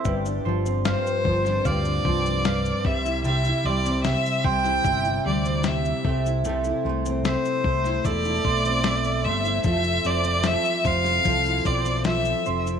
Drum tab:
SH |xx-xxx-xxx-xxx-x|xx-xxx-xxx-xxx-x|xx-xxx-xxx-xxx-x|xxxxxxxxxxxxxxxx|
SD |----o--o----o---|----o--o----o---|----o--o----o---|----o--o----o---|
BD |o-----o-o-o---o-|------o-o-----o-|------o-o-o-----|o-----o-o-o-----|